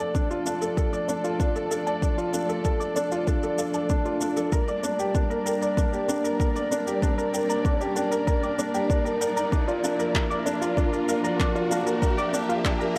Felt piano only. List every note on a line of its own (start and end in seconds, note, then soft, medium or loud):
0.00 0.62 A4 medium
0.00 0.14 D5 medium
0.15 0.30 D4 medium
0.31 0.45 F4 medium
0.46 0.61 D4 medium
0.62 0.76 A4 medium
0.77 0.92 A4 medium
0.93 1.08 D5 medium
1.09 1.24 D4 medium
1.24 1.39 F4 medium
1.40 1.55 D4 medium
1.56 1.69 A4 medium
1.71 1.86 A4 medium
1.87 2.02 D5 medium
2.02 2.17 D4 medium
2.18 2.33 F4 medium
2.34 2.49 D4 medium
2.49 2.63 A4 medium
2.65 2.80 A4 medium
2.80 2.95 D5 medium
2.96 3.11 D4 medium
3.12 3.27 F4 medium
3.28 3.42 D4 medium
3.43 3.57 A4 medium
3.59 3.74 A4 medium
3.74 3.89 D5 medium
3.90 4.05 D4 medium
4.05 4.20 F4 medium
4.21 4.36 D4 medium
4.37 4.52 A4 medium
4.52 4.67 A#4 medium
4.68 4.83 D5 medium
4.83 4.98 D4 medium
4.99 5.14 G4 medium
5.14 5.30 D4 medium
5.30 5.44 A#4 medium
5.46 5.61 A#4 medium
5.61 5.76 D5 medium
5.77 5.92 D4 medium
5.92 6.08 G4 medium
6.08 6.23 D4 medium
6.24 6.38 A#4 medium
6.40 6.55 A#4 medium
6.55 6.70 D5 medium
6.71 6.86 D4 medium
6.87 7.02 G4 medium
7.02 7.17 D4 medium
7.18 7.32 A#4 medium
7.33 7.48 A#4 medium
7.49 7.64 D5 medium
7.65 7.80 D4 medium
7.80 7.95 G4 medium
7.96 8.11 D4 medium
8.11 8.25 A#4 medium
8.27 8.42 A#4 medium
8.43 8.58 D5 medium
8.58 8.73 D4 medium
8.74 8.89 G4 medium
8.90 9.05 D4 medium
9.05 9.19 A#4 medium
9.21 9.36 A#4 medium
9.36 9.52 D5 medium
9.52 9.67 D4 medium
9.68 9.83 F4 medium
9.84 9.99 D4 medium
9.99 10.13 A#4 medium
10.15 10.30 A#4 medium
10.30 10.45 D5 medium
10.46 10.61 D4 medium
10.61 10.77 F4 medium
10.77 10.92 D4 medium
10.93 11.07 A#4 medium
11.08 11.24 A#4 medium
11.24 11.39 D5 medium
11.39 11.55 D4 medium
11.55 11.70 F4 medium
11.71 11.86 D4 medium
11.86 12.00 A#4 medium
12.02 12.17 A#4 medium
12.17 12.33 D5 medium
12.33 12.48 D4 medium
12.49 12.64 F4 medium
12.64 12.80 D4 medium
12.80 12.94 A#4 medium